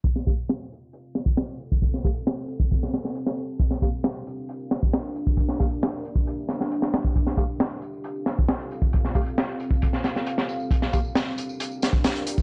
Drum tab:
HH |x-x-x-x-x-x-xxx-|x-oxx-x-x-x-x---|x-x-x-x-x-x-xxx-|x-oxx-x-x-x-x-x-|
TB |xxxxx-x-xxxxx-xx|xxxxx-xxxxxxx-xx|xxxxx-xxxxxxx-xx|xxxxx-xxxxxxx-xx|
SD |-o--o-----o-o---|-o--o----ooo-o--|-o--o-----o-o---|-o--o-----oo-oo-|
BD |o-o--------o---o|o-o----oo-------|o-o--------o---o|o-o----o-------o|

HH |x-x-x-x-x-x-xxx-|x-oxx-x-x-x-x---|x-x-x-x-x-x-xxx-|
TB |xxxxx-xxxxx-x-xx|xxxxx-xxxxxxx-xx|xxxxx-xxxxxxx-xx|
SD |-o--o-----o-o---|-o--o----ooo-o--|-o--o-----o-o---|
BD |o-o--------o---o|o-o----oo-------|o-o--------o---o|